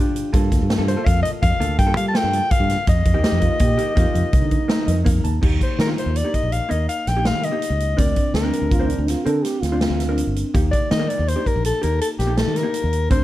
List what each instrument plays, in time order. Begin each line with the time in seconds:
Already playing: hollow-body jazz guitar D4 F4 G4
0.16 closed hi-hat
0.33 fingered electric bass G2, hollow-body jazz guitar A#3 F4 A4, kick, closed hi-hat
0.52 fingered electric bass D2, kick, snare, closed hi-hat
0.62 fingered electric bass G2
0.70 snare, closed hi-hat
0.78 fingered electric bass G2, hollow-body jazz guitar A#3 F4 A4
0.88 soprano saxophone C5, closed hi-hat
0.97 hollow-body jazz guitar A#3 F4 A4
1.05 fingered electric bass F2, soprano saxophone F5, kick, closed hi-hat
1.23 soprano saxophone D#5, closed hi-hat
1.42 fingered electric bass F2, soprano saxophone F5, kick, closed hi-hat
1.60 fingered electric bass D2, hollow-body jazz guitar A#3 F4 A4, closed hi-hat
1.79 fingered electric bass G2, soprano saxophone G5, kick, closed hi-hat
1.86 hollow-body jazz guitar A#3 F4 A4
1.96 fingered electric bass G3, soprano saxophone F5, closed hi-hat
2.08 soprano saxophone A5
2.13 hollow-body jazz guitar A#3 F4 A4, soprano saxophone G5, snare, closed hi-hat
2.24 fingered electric bass G2
2.33 closed hi-hat
2.51 soprano saxophone F5, kick, closed hi-hat
2.60 fingered electric bass G2
2.69 snare, closed hi-hat
2.87 fingered electric bass F2, soprano saxophone D#5, kick, closed hi-hat
3.05 fingered electric bass F2, kick, closed hi-hat
3.14 fingered electric bass D#2, hollow-body jazz guitar A#3 D#4 G4
3.24 trombone G4, snare, closed hi-hat
3.32 fingered electric bass F2
3.41 trombone F4, kick, closed hi-hat
3.59 fingered electric bass A#2, trombone G4, kick, closed hi-hat
3.78 hollow-body jazz guitar A#3 D#4 G4, closed hi-hat
3.96 fingered electric bass F2, hollow-body jazz guitar A#3 D#4 G4, trombone F4, kick, closed hi-hat
4.15 fingered electric bass F2, closed hi-hat
4.33 fingered electric bass C2, trombone D#4, kick, closed hi-hat
4.41 fingered electric bass D3
4.51 kick, closed hi-hat
4.68 hollow-body jazz guitar A#3 D#4 A#4, snare, closed hi-hat
4.87 fingered electric bass F2, hollow-body jazz guitar D#5, closed hi-hat
5.04 fingered electric bass F2, hollow-body jazz guitar A#3 D#4 A#4 F5, kick, closed hi-hat
5.24 fingered electric bass D#2, hollow-body jazz guitar A5, closed hi-hat
5.41 fingered electric bass D#2, hollow-body jazz guitar A#3 D#4 G4, kick, crash
5.61 soprano saxophone C5, kick, closed hi-hat
5.79 fingered electric bass D#3, soprano saxophone A#4, snare, closed hi-hat
5.87 hollow-body jazz guitar A#3 D#4 F4
5.98 soprano saxophone C5, closed hi-hat
6.06 fingered electric bass D#2
6.16 soprano saxophone D5, closed hi-hat
6.24 hollow-body jazz guitar A#3 D#4 G4
6.34 soprano saxophone D#5, kick, closed hi-hat
6.43 fingered electric bass A#1
6.52 soprano saxophone F5, closed hi-hat
6.69 fingered electric bass D#2, hollow-body jazz guitar A#3 D#4 A#4, soprano saxophone D#5, closed hi-hat
6.89 soprano saxophone F5, closed hi-hat
7.07 fingered electric bass A#1, soprano saxophone G5, snare, closed hi-hat
7.17 hollow-body jazz guitar A#3 D#4 G4
7.25 soprano saxophone F5, snare, closed hi-hat
7.34 fingered electric bass D#3
7.43 soprano saxophone D#5, closed hi-hat
7.52 hollow-body jazz guitar A#3 D#4 G4
7.62 closed hi-hat
7.70 fingered electric bass C#2
7.80 closed hi-hat
7.97 fingered electric bass D2, hollow-body jazz guitar C4 D4 A#4, soprano saxophone D5, kick, closed hi-hat
8.16 kick, closed hi-hat
8.34 fingered electric bass D2, soprano saxophone A#4, snare, closed hi-hat
8.43 hollow-body jazz guitar C4 D4 A#4
8.53 closed hi-hat
8.62 fingered electric bass D2
8.71 trombone F4, kick, closed hi-hat
8.79 hollow-body jazz guitar C4 D4 C5
8.90 trombone D4, closed hi-hat
8.98 fingered electric bass D2
9.08 trombone F4, snare, closed hi-hat
9.25 fingered electric bass D3, hollow-body jazz guitar C4 D4 A#4, trombone A4, closed hi-hat
9.44 trombone G4, snare, closed hi-hat
9.62 fingered electric bass D2, trombone F4, snare, closed hi-hat
9.72 hollow-body jazz guitar C4 D4 F4
9.81 snare, closed hi-hat
9.90 fingered electric bass D2
10.00 snare, closed hi-hat
10.09 hollow-body jazz guitar C4 D4 A#4
10.18 closed hi-hat
10.27 fingered electric bass G1
10.36 closed hi-hat
10.54 fingered electric bass D#2, hollow-body jazz guitar A#3 D#4 G4, kick, closed hi-hat
10.71 soprano saxophone D5, kick, closed hi-hat
10.91 fingered electric bass D#3, soprano saxophone D#5, snare, closed hi-hat
10.99 hollow-body jazz guitar A#3 D#4 A#4
11.09 soprano saxophone D5, closed hi-hat
11.19 fingered electric bass D#2
11.28 soprano saxophone C5, closed hi-hat
11.36 hollow-body jazz guitar A#3 D#4 G4
11.46 soprano saxophone A#4, kick, closed hi-hat
11.56 fingered electric bass A#1
11.64 soprano saxophone A4, closed hi-hat
11.82 fingered electric bass D#2, hollow-body jazz guitar A#3 D#4 G4, soprano saxophone A#4, closed hi-hat
12.01 soprano saxophone A4, closed hi-hat
12.19 fingered electric bass A#1, soprano saxophone G4, snare, closed hi-hat
12.27 hollow-body jazz guitar A#3 D#4 G4
12.37 soprano saxophone A4, snare, closed hi-hat
12.47 fingered electric bass D#3
12.56 soprano saxophone A#4, snare, closed hi-hat
12.63 hollow-body jazz guitar A#3 D#4 G4
12.74 closed hi-hat
12.84 fingered electric bass D#2
12.93 closed hi-hat
13.10 fingered electric bass D2, hollow-body jazz guitar C4 D4 A#4, soprano saxophone C5, kick, closed hi-hat